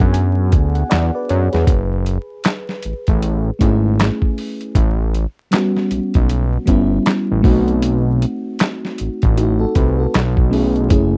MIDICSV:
0, 0, Header, 1, 4, 480
1, 0, Start_track
1, 0, Tempo, 769231
1, 1045, Time_signature, 4, 2, 24, 8
1, 6971, End_track
2, 0, Start_track
2, 0, Title_t, "FM electric piano"
2, 0, Program_c, 0, 5
2, 0, Control_c, 0, 64, 127
2, 0, Note_on_c, 0, 59, 72
2, 0, Note_on_c, 0, 62, 54
2, 0, Note_on_c, 0, 66, 60
2, 0, Note_on_c, 0, 68, 72
2, 0, Note_on_c, 0, 78, 63
2, 0, Note_on_c, 0, 80, 67
2, 77, Note_off_c, 0, 78, 0
2, 80, Note_off_c, 0, 80, 0
2, 80, Note_on_c, 0, 80, 70
2, 447, Note_off_c, 0, 80, 0
2, 467, Note_on_c, 0, 78, 56
2, 553, Note_off_c, 0, 78, 0
2, 559, Note_on_c, 0, 74, 71
2, 561, Note_on_c, 0, 78, 70
2, 565, Note_off_c, 0, 74, 0
2, 565, Note_on_c, 0, 74, 60
2, 704, Note_off_c, 0, 78, 0
2, 707, Note_off_c, 0, 74, 0
2, 716, Note_on_c, 0, 74, 64
2, 720, Note_on_c, 0, 71, 53
2, 801, Note_off_c, 0, 74, 0
2, 804, Note_off_c, 0, 71, 0
2, 806, Note_on_c, 0, 73, 62
2, 947, Note_off_c, 0, 73, 0
2, 954, Note_on_c, 0, 71, 65
2, 955, Note_off_c, 0, 68, 0
2, 955, Note_on_c, 0, 68, 55
2, 1053, Note_off_c, 0, 59, 0
2, 1053, Control_c, 0, 64, 0
2, 1054, Note_off_c, 0, 66, 0
2, 1057, Note_off_c, 0, 62, 0
2, 1178, Control_c, 0, 64, 127
2, 1182, Note_off_c, 0, 68, 0
2, 1182, Note_off_c, 0, 71, 0
2, 2240, Note_on_c, 0, 57, 72
2, 2245, Note_on_c, 0, 61, 63
2, 2251, Note_on_c, 0, 64, 69
2, 2260, Note_on_c, 0, 68, 80
2, 2428, Note_off_c, 0, 57, 0
2, 2431, Note_off_c, 0, 61, 0
2, 2433, Note_off_c, 0, 64, 0
2, 2438, Note_off_c, 0, 68, 0
2, 2974, Control_c, 0, 64, 0
2, 3080, Control_c, 0, 64, 127
2, 3438, Note_on_c, 0, 55, 65
2, 3445, Note_on_c, 0, 59, 67
2, 3455, Note_on_c, 0, 61, 63
2, 3459, Note_on_c, 0, 66, 77
2, 3627, Note_off_c, 0, 55, 0
2, 3631, Note_off_c, 0, 59, 0
2, 3635, Note_off_c, 0, 61, 0
2, 3637, Note_off_c, 0, 66, 0
2, 4154, Note_on_c, 0, 55, 77
2, 4162, Note_on_c, 0, 59, 72
2, 4167, Note_on_c, 0, 61, 74
2, 4173, Note_on_c, 0, 64, 92
2, 4519, Note_off_c, 0, 55, 0
2, 4523, Note_off_c, 0, 59, 0
2, 4525, Note_off_c, 0, 61, 0
2, 4528, Note_off_c, 0, 64, 0
2, 4632, Note_on_c, 0, 57, 86
2, 4641, Note_on_c, 0, 60, 75
2, 4647, Note_on_c, 0, 63, 73
2, 4653, Note_on_c, 0, 66, 89
2, 4654, Control_c, 0, 64, 0
2, 4751, Control_c, 0, 64, 127
2, 5446, Note_off_c, 0, 57, 0
2, 5451, Note_off_c, 0, 60, 0
2, 5454, Note_off_c, 0, 63, 0
2, 5457, Note_off_c, 0, 66, 0
2, 5848, Note_on_c, 0, 66, 70
2, 5853, Note_on_c, 0, 63, 61
2, 5988, Note_off_c, 0, 66, 0
2, 5991, Note_off_c, 0, 63, 0
2, 5991, Note_on_c, 0, 69, 79
2, 5998, Note_on_c, 0, 66, 70
2, 6079, Note_off_c, 0, 69, 0
2, 6083, Note_off_c, 0, 66, 0
2, 6086, Note_on_c, 0, 71, 64
2, 6227, Note_off_c, 0, 71, 0
2, 6233, Note_on_c, 0, 69, 59
2, 6237, Note_on_c, 0, 66, 54
2, 6334, Control_c, 0, 64, 0
2, 6428, Control_c, 0, 64, 127
2, 6462, Note_off_c, 0, 69, 0
2, 6464, Note_off_c, 0, 66, 0
2, 6553, Note_on_c, 0, 57, 64
2, 6558, Note_on_c, 0, 61, 59
2, 6568, Note_on_c, 0, 64, 62
2, 6575, Note_on_c, 0, 68, 66
2, 6745, Note_off_c, 0, 57, 0
2, 6747, Note_off_c, 0, 61, 0
2, 6752, Note_off_c, 0, 64, 0
2, 6755, Note_off_c, 0, 68, 0
2, 6792, Note_on_c, 0, 57, 65
2, 6797, Note_on_c, 0, 61, 72
2, 6806, Note_on_c, 0, 64, 75
2, 6813, Control_c, 0, 64, 0
2, 6813, Note_on_c, 0, 68, 86
2, 6910, Control_c, 0, 64, 127
2, 6971, Note_off_c, 0, 57, 0
2, 6971, Note_off_c, 0, 61, 0
2, 6971, Note_off_c, 0, 64, 0
2, 6971, Note_off_c, 0, 68, 0
2, 6971, End_track
3, 0, Start_track
3, 0, Title_t, "Analog synth bass"
3, 0, Program_c, 1, 38
3, 8, Note_on_c, 1, 42, 90
3, 332, Note_on_c, 1, 38, 95
3, 342, Note_off_c, 1, 42, 0
3, 522, Note_off_c, 1, 38, 0
3, 579, Note_on_c, 1, 40, 91
3, 693, Note_off_c, 1, 40, 0
3, 813, Note_on_c, 1, 42, 90
3, 930, Note_off_c, 1, 42, 0
3, 963, Note_on_c, 1, 40, 87
3, 1032, Note_off_c, 1, 40, 0
3, 1051, Note_on_c, 1, 30, 115
3, 1360, Note_off_c, 1, 30, 0
3, 1780, Note_on_c, 1, 33, 46
3, 1836, Note_off_c, 1, 33, 0
3, 1928, Note_on_c, 1, 33, 91
3, 2188, Note_off_c, 1, 33, 0
3, 2255, Note_on_c, 1, 32, 108
3, 2563, Note_off_c, 1, 32, 0
3, 2971, Note_on_c, 1, 33, 103
3, 3280, Note_off_c, 1, 33, 0
3, 3688, Note_on_c, 1, 35, 52
3, 3747, Note_off_c, 1, 35, 0
3, 3844, Note_on_c, 1, 35, 105
3, 4105, Note_off_c, 1, 35, 0
3, 4174, Note_on_c, 1, 31, 97
3, 4363, Note_off_c, 1, 31, 0
3, 4564, Note_on_c, 1, 33, 73
3, 4633, Note_off_c, 1, 33, 0
3, 4649, Note_on_c, 1, 35, 106
3, 5152, Note_off_c, 1, 35, 0
3, 5619, Note_on_c, 1, 33, 50
3, 5675, Note_off_c, 1, 33, 0
3, 5766, Note_on_c, 1, 33, 102
3, 6027, Note_off_c, 1, 33, 0
3, 6094, Note_on_c, 1, 36, 99
3, 6283, Note_off_c, 1, 36, 0
3, 6335, Note_on_c, 1, 35, 101
3, 6810, Note_on_c, 1, 30, 106
3, 6819, Note_off_c, 1, 35, 0
3, 6971, Note_off_c, 1, 30, 0
3, 6971, End_track
4, 0, Start_track
4, 0, Title_t, "Drums"
4, 0, Note_on_c, 9, 36, 96
4, 62, Note_off_c, 9, 36, 0
4, 87, Note_on_c, 9, 42, 82
4, 149, Note_off_c, 9, 42, 0
4, 325, Note_on_c, 9, 42, 63
4, 328, Note_on_c, 9, 36, 96
4, 387, Note_off_c, 9, 42, 0
4, 391, Note_off_c, 9, 36, 0
4, 470, Note_on_c, 9, 42, 32
4, 532, Note_off_c, 9, 42, 0
4, 566, Note_on_c, 9, 42, 78
4, 573, Note_on_c, 9, 38, 103
4, 575, Note_on_c, 9, 39, 76
4, 629, Note_off_c, 9, 42, 0
4, 636, Note_off_c, 9, 38, 0
4, 637, Note_off_c, 9, 39, 0
4, 807, Note_on_c, 9, 42, 59
4, 870, Note_off_c, 9, 42, 0
4, 953, Note_on_c, 9, 42, 31
4, 964, Note_on_c, 9, 38, 31
4, 1015, Note_off_c, 9, 42, 0
4, 1026, Note_off_c, 9, 38, 0
4, 1043, Note_on_c, 9, 36, 112
4, 1044, Note_on_c, 9, 42, 94
4, 1105, Note_off_c, 9, 36, 0
4, 1107, Note_off_c, 9, 42, 0
4, 1286, Note_on_c, 9, 42, 68
4, 1349, Note_off_c, 9, 42, 0
4, 1521, Note_on_c, 9, 42, 83
4, 1533, Note_on_c, 9, 38, 99
4, 1535, Note_on_c, 9, 39, 92
4, 1584, Note_off_c, 9, 42, 0
4, 1596, Note_off_c, 9, 38, 0
4, 1597, Note_off_c, 9, 39, 0
4, 1679, Note_on_c, 9, 38, 44
4, 1741, Note_off_c, 9, 38, 0
4, 1763, Note_on_c, 9, 42, 70
4, 1826, Note_off_c, 9, 42, 0
4, 1914, Note_on_c, 9, 42, 35
4, 1921, Note_on_c, 9, 36, 84
4, 1977, Note_off_c, 9, 42, 0
4, 1984, Note_off_c, 9, 36, 0
4, 2012, Note_on_c, 9, 42, 83
4, 2075, Note_off_c, 9, 42, 0
4, 2250, Note_on_c, 9, 36, 78
4, 2251, Note_on_c, 9, 42, 66
4, 2313, Note_off_c, 9, 36, 0
4, 2313, Note_off_c, 9, 42, 0
4, 2493, Note_on_c, 9, 42, 76
4, 2499, Note_on_c, 9, 38, 98
4, 2501, Note_on_c, 9, 39, 84
4, 2555, Note_off_c, 9, 42, 0
4, 2562, Note_off_c, 9, 38, 0
4, 2564, Note_off_c, 9, 39, 0
4, 2632, Note_on_c, 9, 36, 65
4, 2695, Note_off_c, 9, 36, 0
4, 2733, Note_on_c, 9, 46, 43
4, 2795, Note_off_c, 9, 46, 0
4, 2875, Note_on_c, 9, 42, 31
4, 2938, Note_off_c, 9, 42, 0
4, 2964, Note_on_c, 9, 36, 94
4, 2966, Note_on_c, 9, 42, 96
4, 3027, Note_off_c, 9, 36, 0
4, 3029, Note_off_c, 9, 42, 0
4, 3210, Note_on_c, 9, 42, 58
4, 3272, Note_off_c, 9, 42, 0
4, 3443, Note_on_c, 9, 42, 76
4, 3455, Note_on_c, 9, 38, 103
4, 3456, Note_on_c, 9, 39, 86
4, 3505, Note_off_c, 9, 42, 0
4, 3517, Note_off_c, 9, 38, 0
4, 3519, Note_off_c, 9, 39, 0
4, 3598, Note_on_c, 9, 38, 44
4, 3660, Note_off_c, 9, 38, 0
4, 3687, Note_on_c, 9, 42, 65
4, 3749, Note_off_c, 9, 42, 0
4, 3832, Note_on_c, 9, 42, 37
4, 3839, Note_on_c, 9, 36, 84
4, 3894, Note_off_c, 9, 42, 0
4, 3901, Note_off_c, 9, 36, 0
4, 3928, Note_on_c, 9, 42, 81
4, 3991, Note_off_c, 9, 42, 0
4, 4163, Note_on_c, 9, 42, 71
4, 4167, Note_on_c, 9, 36, 80
4, 4225, Note_off_c, 9, 42, 0
4, 4229, Note_off_c, 9, 36, 0
4, 4404, Note_on_c, 9, 42, 78
4, 4411, Note_on_c, 9, 38, 104
4, 4413, Note_on_c, 9, 39, 78
4, 4467, Note_off_c, 9, 42, 0
4, 4474, Note_off_c, 9, 38, 0
4, 4475, Note_off_c, 9, 39, 0
4, 4643, Note_on_c, 9, 36, 107
4, 4647, Note_on_c, 9, 46, 45
4, 4705, Note_off_c, 9, 36, 0
4, 4710, Note_off_c, 9, 46, 0
4, 4792, Note_on_c, 9, 42, 33
4, 4854, Note_off_c, 9, 42, 0
4, 4882, Note_on_c, 9, 42, 102
4, 4945, Note_off_c, 9, 42, 0
4, 5130, Note_on_c, 9, 42, 63
4, 5193, Note_off_c, 9, 42, 0
4, 5361, Note_on_c, 9, 42, 72
4, 5373, Note_on_c, 9, 38, 104
4, 5375, Note_on_c, 9, 39, 89
4, 5423, Note_off_c, 9, 42, 0
4, 5435, Note_off_c, 9, 38, 0
4, 5437, Note_off_c, 9, 39, 0
4, 5521, Note_on_c, 9, 38, 43
4, 5583, Note_off_c, 9, 38, 0
4, 5604, Note_on_c, 9, 42, 77
4, 5667, Note_off_c, 9, 42, 0
4, 5752, Note_on_c, 9, 42, 32
4, 5759, Note_on_c, 9, 36, 93
4, 5815, Note_off_c, 9, 42, 0
4, 5821, Note_off_c, 9, 36, 0
4, 5850, Note_on_c, 9, 42, 79
4, 5912, Note_off_c, 9, 42, 0
4, 6085, Note_on_c, 9, 42, 63
4, 6088, Note_on_c, 9, 36, 88
4, 6148, Note_off_c, 9, 42, 0
4, 6151, Note_off_c, 9, 36, 0
4, 6328, Note_on_c, 9, 42, 74
4, 6335, Note_on_c, 9, 38, 98
4, 6337, Note_on_c, 9, 39, 80
4, 6391, Note_off_c, 9, 42, 0
4, 6398, Note_off_c, 9, 38, 0
4, 6399, Note_off_c, 9, 39, 0
4, 6471, Note_on_c, 9, 36, 76
4, 6533, Note_off_c, 9, 36, 0
4, 6570, Note_on_c, 9, 46, 46
4, 6633, Note_off_c, 9, 46, 0
4, 6713, Note_on_c, 9, 42, 28
4, 6775, Note_off_c, 9, 42, 0
4, 6803, Note_on_c, 9, 42, 89
4, 6804, Note_on_c, 9, 36, 110
4, 6865, Note_off_c, 9, 42, 0
4, 6866, Note_off_c, 9, 36, 0
4, 6971, End_track
0, 0, End_of_file